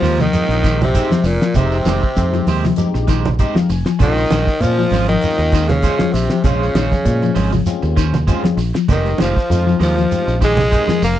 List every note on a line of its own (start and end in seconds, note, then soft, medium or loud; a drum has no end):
0.00 0.27 D#2 medium
0.00 0.14 F3 medium
0.00 0.21 F3 loud
0.00 0.23 F3 loud
0.00 0.20 G#3 medium
0.00 0.19 D#4 medium
0.00 0.22 F4 loud
0.00 0.19 G4 loud
0.00 0.18 C5 medium
0.00 open hi-hat medium
0.00 high conga medium
0.04 shekere medium
0.19 0.81 D#3 medium
0.19 0.82 D#3 loud
0.19 0.44 F3 medium
0.19 0.82 D#4 loud
0.19 muted clean electric guitar stroke soft
0.19 closed hi-hat soft
0.19 low conga medium
0.19 shekere soft
0.33 0.65 G#3 medium
0.33 0.65 C4 medium
0.33 0.65 D#4 medium
0.33 0.65 F4 medium
0.33 closed hi-hat medium
0.33 high conga medium
0.33 shekere loud
0.49 0.98 A#1 medium
0.49 muted clean electric guitar stroke soft
0.49 closed hi-hat soft
0.49 shekere soft
0.63 0.88 D#3 medium
0.63 0.83 G#3 medium
0.63 0.84 D#4 medium
0.63 0.84 G4 medium
0.63 0.84 C5 medium
0.63 kick medium
0.63 snare soft
0.63 closed hi-hat medium
0.63 shekere medium
0.81 1.28 C3 medium
0.81 1.28 C3 loud
0.81 1.28 C4 medium
0.81 closed hi-hat soft
0.81 high conga medium
0.81 low conga medium
0.81 shekere soft
0.94 1.11 G#3 medium
0.94 1.26 G#3 medium
0.94 1.26 C4 medium
0.94 1.11 D#4 medium
0.94 1.26 D#4 medium
0.94 1.11 G4 medium
0.94 1.26 G4 medium
0.94 1.11 C5 medium
0.94 kick medium
0.94 closed hi-hat medium
0.94 shekere medium
1.10 1.36 F3 medium
1.10 muted fingered electric bass stroke soft
1.10 muted clean electric guitar stroke soft
1.10 snare medium
1.10 closed hi-hat soft
1.10 high conga medium
1.10 shekere soft
1.24 1.38 F1 medium
1.24 1.57 A#2 medium
1.24 1.58 A#2 medium
1.24 1.58 A#3 medium
1.24 muted clean electric guitar stroke soft
1.24 open hi-hat medium
1.24 shekere medium
1.41 1.53 F3 medium
1.41 muted clean electric guitar stroke soft
1.41 snare medium
1.41 closed hi-hat soft
1.41 shekere soft
1.54 1.80 F1 loud
1.54 2.78 C3 medium
1.54 2.79 C3 medium
1.54 1.87 G#3 medium
1.54 1.76 G#3 medium
1.54 1.87 C4 medium
1.54 2.79 C4 medium
1.54 1.87 D#4 medium
1.54 1.76 D#4 medium
1.54 1.87 G4 medium
1.54 1.77 G4 medium
1.54 1.76 C5 medium
1.54 kick loud
1.54 snare soft
1.54 closed hi-hat medium
1.54 low conga medium
1.54 shekere medium
1.71 shekere soft
1.85 1.99 F1 medium
1.85 2.10 D#3 medium
1.85 2.04 G#3 medium
1.85 2.03 D#4 medium
1.85 2.03 G4 medium
1.85 2.02 C5 medium
1.85 snare medium
1.85 closed hi-hat medium
1.85 high conga loud
1.85 shekere medium
2.02 muted clean electric guitar stroke soft
2.02 kick medium
2.02 shekere soft
2.16 2.41 F2 loud
2.16 2.48 G#3 medium
2.16 2.48 C4 medium
2.16 2.48 D#4 medium
2.16 2.48 G4 medium
2.16 muted clean electric guitar stroke soft
2.16 kick medium
2.16 closed hi-hat medium
2.16 shekere loud
2.33 2.58 F3 medium
2.33 muted clean electric guitar stroke medium
2.33 closed hi-hat soft
2.33 shekere soft
2.47 2.71 D#2 medium
2.47 2.65 G#3 loud
2.47 2.65 G4 loud
2.47 2.64 C5 loud
2.47 open hi-hat medium
2.47 high conga medium
2.47 shekere medium
2.64 2.89 F3 medium
2.64 muted clean electric guitar stroke medium
2.64 snare soft
2.64 low conga medium
2.64 shekere soft
2.76 3.08 G#3 medium
2.76 3.09 C4 medium
2.76 3.09 D#4 medium
2.76 3.09 G4 loud
2.76 closed hi-hat medium
2.76 high conga medium
2.76 shekere medium
2.94 3.44 A#1 medium
2.94 muted clean electric guitar stroke medium
2.94 snare soft
2.94 shekere soft
3.07 3.33 D#3 medium
3.07 3.28 G#3 medium
3.07 3.28 D#4 medium
3.07 3.28 G4 medium
3.07 3.29 C5 medium
3.07 kick medium
3.07 snare soft
3.07 closed hi-hat medium
3.07 shekere medium
3.25 snare soft
3.25 closed hi-hat soft
3.25 high conga loud
3.25 low conga medium
3.25 shekere soft
3.39 3.56 G#3 medium
3.39 3.70 G#3 medium
3.39 3.70 C4 medium
3.39 3.56 D#4 loud
3.39 3.70 D#4 medium
3.39 3.70 G4 loud
3.39 3.56 G4 loud
3.39 3.55 C5 loud
3.39 3.55 D#5 medium
3.39 kick medium
3.39 closed hi-hat medium
3.39 shekere medium
3.55 3.80 F3 medium
3.55 3.70 F5 medium
3.55 muted fingered electric bass stroke soft
3.55 muted clean electric guitar stroke medium
3.55 snare medium
3.55 closed hi-hat soft
3.55 high conga medium
3.55 shekere soft
3.69 3.83 F1 medium
3.69 3.99 G#5 medium
3.69 muted clean electric guitar stroke medium
3.69 open hi-hat medium
3.69 shekere medium
3.86 3.97 F3 medium
3.86 muted clean electric guitar stroke soft
3.86 snare medium
3.86 closed hi-hat soft
3.86 shekere soft
3.99 4.25 A#1 loud
3.99 4.63 D#3 medium
3.99 4.63 D#3 loud
3.99 4.19 G#3 medium
3.99 4.32 G#3 medium
3.99 4.32 C4 medium
3.99 4.19 C#4 medium
3.99 4.32 C#4 medium
3.99 4.62 D#4 loud
3.99 4.19 F4 medium
3.99 4.32 F4 medium
3.99 4.20 C5 medium
3.99 kick medium
3.99 snare soft
3.99 closed hi-hat medium
3.99 low conga medium
3.99 shekere medium
4.17 closed hi-hat soft
4.17 shekere soft
4.30 4.44 A#1 loud
4.30 4.55 D#3 medium
4.30 4.48 G#3 medium
4.30 4.47 C#4 medium
4.30 4.47 F4 medium
4.30 4.47 C5 medium
4.30 snare medium
4.30 closed hi-hat medium
4.30 high conga loud
4.30 shekere medium
4.47 muted clean electric guitar stroke soft
4.47 kick medium
4.47 snare soft
4.47 shekere soft
4.60 4.85 A#2 loud
4.60 5.08 F3 loud
4.60 4.93 G#3 medium
4.60 4.93 C4 medium
4.60 4.93 C#4 medium
4.60 5.07 F4 medium
4.60 4.93 F4 loud
4.60 muted clean electric guitar stroke soft
4.60 snare soft
4.60 closed hi-hat medium
4.60 shekere loud
4.78 5.02 F3 medium
4.78 muted clean electric guitar stroke soft
4.78 shekere soft
4.90 5.16 G#1 medium
4.90 5.09 G#3 medium
4.90 5.08 C#4 medium
4.90 5.08 F4 medium
4.90 5.08 C5 medium
4.90 open hi-hat medium
4.90 high conga medium
4.90 shekere medium
5.08 5.70 D#3 loud
5.08 5.68 D#3 medium
5.08 5.33 F3 medium
5.08 5.70 D#4 loud
5.08 muted clean electric guitar stroke soft
5.08 closed hi-hat soft
5.08 shekere soft
5.21 5.54 G#3 medium
5.21 5.54 C4 medium
5.21 5.54 C#4 medium
5.21 5.54 F4 medium
5.21 closed hi-hat medium
5.21 shekere loud
5.38 5.88 D#2 medium
5.38 muted clean electric guitar stroke medium
5.38 closed hi-hat soft
5.38 shekere soft
5.52 5.77 D#3 medium
5.52 5.72 G#3 medium
5.52 5.73 C#4 medium
5.52 5.73 F4 medium
5.52 5.73 C5 medium
5.52 kick medium
5.52 closed hi-hat medium
5.52 shekere medium
5.67 6.13 C#3 medium
5.67 6.14 C#3 loud
5.67 6.14 C#4 medium
5.67 snare soft
5.67 closed hi-hat soft
5.67 high conga medium
5.67 low conga medium
5.71 shekere soft
5.82 6.00 G#3 medium
5.82 6.15 G#3 medium
5.82 6.00 C#4 medium
5.82 6.15 C#4 medium
5.82 6.00 F4 medium
5.82 6.15 F4 medium
5.82 6.00 C5 medium
5.82 6.15 C5 medium
5.82 kick medium
5.82 closed hi-hat medium
5.82 shekere medium
5.99 6.25 F3 medium
5.99 muted clean electric guitar stroke soft
5.99 muted fingered electric bass stroke soft
5.99 snare medium
5.99 closed hi-hat soft
5.99 high conga medium
5.99 shekere soft
6.12 6.28 A#1 medium
6.12 6.41 C3 medium
6.12 6.43 C3 medium
6.12 6.41 C4 medium
6.12 muted clean electric guitar stroke soft
6.12 open hi-hat medium
6.12 shekere medium
6.30 6.42 F3 medium
6.30 muted clean electric guitar stroke soft
6.30 snare medium
6.30 closed hi-hat soft
6.30 shekere soft
6.42 6.69 A#1 medium
6.42 7.61 C#3 medium
6.42 7.63 C#3 medium
6.42 6.75 G#3 medium
6.42 6.65 G#3 medium
6.42 7.61 C#4 medium
6.42 6.75 C#4 medium
6.42 6.75 F4 medium
6.42 6.76 C5 medium
6.42 kick medium
6.42 snare soft
6.42 closed hi-hat medium
6.42 low conga medium
6.42 shekere medium
6.46 6.65 C#4 medium
6.46 6.65 F4 medium
6.46 6.65 C5 medium
6.63 shekere soft
6.75 6.88 A#1 medium
6.75 7.00 D#3 medium
6.75 6.92 G#3 medium
6.75 6.91 C#4 medium
6.75 6.91 F4 medium
6.75 6.90 C5 medium
6.75 snare medium
6.75 closed hi-hat medium
6.75 high conga loud
6.75 shekere medium
6.92 muted clean electric guitar stroke soft
6.92 kick medium
6.92 snare soft
6.92 high conga medium
6.92 shekere soft
7.05 7.30 A#2 loud
7.05 7.37 G#3 medium
7.05 7.37 C#4 medium
7.05 7.37 F4 medium
7.05 7.37 C5 medium
7.05 muted clean electric guitar stroke soft
7.05 kick medium
7.05 closed hi-hat medium
7.05 shekere loud
7.22 7.47 F3 medium
7.22 muted clean electric guitar stroke medium
7.22 closed hi-hat soft
7.22 shekere soft
7.35 7.61 G#1 medium
7.35 7.52 G#3 loud
7.35 7.52 C#4 loud
7.35 7.51 F4 medium
7.35 7.51 C5 loud
7.35 open hi-hat medium
7.35 high conga medium
7.35 shekere medium
7.52 7.77 F3 medium
7.52 muted clean electric guitar stroke soft
7.52 low conga medium
7.52 shekere soft
7.66 7.97 G#3 medium
7.66 7.97 C4 medium
7.66 7.98 C#4 medium
7.66 7.98 F4 medium
7.66 snare soft
7.66 closed hi-hat medium
7.66 shekere medium
7.82 8.32 D#2 medium
7.82 muted clean electric guitar stroke medium
7.82 shekere soft
7.96 8.21 D#3 medium
7.96 8.17 C#4 medium
7.96 8.17 F4 medium
7.96 8.17 C5 medium
7.96 kick medium
7.96 closed hi-hat medium
7.96 shekere medium
8.14 snare soft
8.14 closed hi-hat soft
8.14 high conga loud
8.14 low conga medium
8.14 shekere soft
8.27 8.44 G#3 loud
8.27 8.59 G#3 medium
8.27 8.59 C4 medium
8.27 8.43 C#4 medium
8.27 8.59 C#4 medium
8.27 8.43 F4 medium
8.27 8.59 F4 loud
8.27 8.43 C5 loud
8.27 kick medium
8.27 closed hi-hat medium
8.27 shekere medium
8.44 8.68 F3 medium
8.44 muted clean electric guitar stroke soft
8.44 muted fingered electric bass stroke soft
8.44 snare medium
8.44 closed hi-hat soft
8.44 high conga medium
8.44 shekere soft
8.57 8.71 A#1 medium
8.57 muted clean electric guitar stroke soft
8.57 open hi-hat medium
8.57 shekere medium
8.74 8.86 F3 medium
8.74 muted clean electric guitar stroke soft
8.74 snare medium
8.74 closed hi-hat soft
8.74 shekere soft
8.88 9.13 F1 loud
8.88 9.18 D#3 medium
8.88 9.19 D#3 medium
8.88 9.08 G#3 medium
8.88 9.20 G#3 medium
8.88 9.20 C4 medium
8.88 9.08 D#4 medium
8.88 9.20 D#4 medium
8.88 9.19 D#4 medium
8.88 9.09 G4 medium
8.88 9.20 G4 medium
8.88 9.09 C5 medium
8.88 kick loud
8.88 closed hi-hat medium
8.88 low conga medium
8.88 shekere loud
9.06 closed hi-hat soft
9.06 shekere soft
9.18 9.33 F1 medium
9.18 9.43 D#3 medium
9.18 9.77 F3 medium
9.18 9.78 F3 medium
9.18 9.36 G#3 medium
9.18 9.35 D#4 medium
9.18 9.78 F4 medium
9.18 9.35 G4 medium
9.18 9.34 C5 medium
9.18 snare medium
9.18 closed hi-hat medium
9.18 high conga loud
9.18 shekere medium
9.36 muted clean electric guitar stroke soft
9.36 kick medium
9.36 snare soft
9.36 shekere soft
9.50 9.74 F2 loud
9.50 9.81 G#3 medium
9.50 9.81 C4 medium
9.50 9.81 D#4 medium
9.50 9.81 F4 medium
9.50 muted clean electric guitar stroke soft
9.50 closed hi-hat medium
9.50 shekere loud
9.66 9.91 F3 medium
9.66 muted clean electric guitar stroke soft
9.66 shekere soft
9.79 10.05 D#2 medium
9.79 10.39 F3 medium
9.79 9.97 G#3 medium
9.79 9.95 D#4 medium
9.79 10.38 F4 medium
9.79 9.95 G4 medium
9.79 9.95 C5 medium
9.79 open hi-hat medium
9.79 high conga medium
9.79 shekere medium
9.96 10.21 F3 medium
9.96 muted clean electric guitar stroke soft
9.96 closed hi-hat soft
9.96 shekere soft
10.11 10.42 G#3 medium
10.11 10.42 C4 medium
10.11 10.42 D#4 medium
10.11 10.42 G4 medium
10.11 closed hi-hat medium
10.11 shekere medium
10.27 10.76 A#1 medium
10.27 muted clean electric guitar stroke soft
10.27 closed hi-hat soft
10.27 shekere soft
10.40 10.66 D#3 medium
10.40 10.61 G#3 medium
10.40 11.00 G#3 loud
10.40 10.61 D#4 medium
10.40 10.61 G4 medium
10.40 11.00 G#4 medium
10.40 10.61 C5 medium
10.40 kick medium
10.40 snare soft
10.40 closed hi-hat medium
10.40 shekere medium
10.45 11.00 G#3 medium
10.57 snare soft
10.57 closed hi-hat soft
10.57 high conga medium
10.57 low conga medium
10.57 shekere soft
10.71 10.88 G#3 medium
10.71 11.03 G#3 medium
10.71 11.03 C4 medium
10.71 10.88 D#4 medium
10.71 11.03 D#4 medium
10.71 10.87 G4 medium
10.71 11.03 A#4 medium
10.71 10.87 C5 loud
10.71 kick medium
10.71 closed hi-hat medium
10.71 shekere medium
10.87 11.13 F3 medium
10.87 muted fingered electric bass stroke soft
10.87 muted clean electric guitar stroke medium
10.87 snare medium
10.87 closed hi-hat soft
10.87 high conga medium
10.87 shekere soft
11.02 11.16 F1 medium
11.02 11.18 A#3 loud
11.02 11.18 A#3 medium
11.02 11.19 A#4 medium
11.02 muted clean electric guitar stroke soft
11.02 open hi-hat medium
11.02 shekere medium